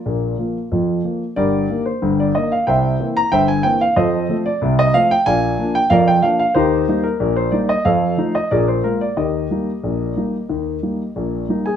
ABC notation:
X:1
M:2/4
L:1/16
Q:1/4=92
K:Eb
V:1 name="Grand piano"
[FBd]4 z4 | [GBd]3 c2 d e f | [c=eg]3 b [ceg] a g f | [=Ace]3 d2 e f g |
[dfa]3 g [Bdf] g f f | [EGc]3 B2 c d e | [=Acf]3 e [_ABd] c B d | [GBe]8- |
[GBe]4 z3 [Aa] |]
V:2 name="Grand piano" clef=bass
[B,,,B,,]2 [F,B,]2 [F,,F,]2 [F,B,]2 | [G,,,G,,]2 [E,B,]2 [G,,,G,,]2 [E,B,]2 | [C,,C,]2 [=E,B,C]2 [G,,,G,,]2 [E,B,C]2 | [F,,F,]2 [F,=A,C]2 [C,,C,]2 [F,A,C]2 |
[B,,,B,,]2 [F,B,D]2 [F,,F,]2 [F,B,D]2 | [E,,E,]2 [G,B,E]2 [B,,,B,,]2 [G,B,E]2 | [F,,F,]2 [F,=A,E]2 [B,,,B,,]2 [_A,B,F]2 | [E,,E,]2 [G,B,E]2 [B,,,B,,]2 [G,B,E]2 |
[E,,E,]2 [G,B,E]2 [B,,,B,,]2 [G,B,E]2 |]